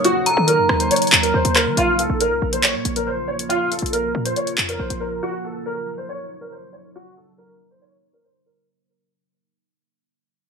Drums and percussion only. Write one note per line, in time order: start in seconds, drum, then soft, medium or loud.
0.04 closed hi-hat medium
0.26 closed hi-hat medium
0.48 closed hi-hat medium
0.69 cross-stick loud
0.80 closed hi-hat medium
0.91 closed hi-hat medium
0.96 closed hi-hat medium
1.02 closed hi-hat medium
1.07 closed hi-hat soft
1.12 clap loud
1.23 closed hi-hat medium
1.45 closed hi-hat medium
1.56 cross-stick loud
1.56 clap medium
1.77 closed hi-hat medium
1.99 closed hi-hat medium
2.21 closed hi-hat medium
2.53 closed hi-hat medium
2.64 clap loud
2.85 closed hi-hat medium
2.96 closed hi-hat medium
3.39 closed hi-hat medium
3.50 closed hi-hat medium
3.72 closed hi-hat medium
3.79 closed hi-hat medium
3.86 closed hi-hat medium
3.93 closed hi-hat medium
4.25 closed hi-hat medium
4.36 closed hi-hat medium
4.47 closed hi-hat medium
4.58 clap loud
4.69 closed hi-hat medium
4.90 closed hi-hat medium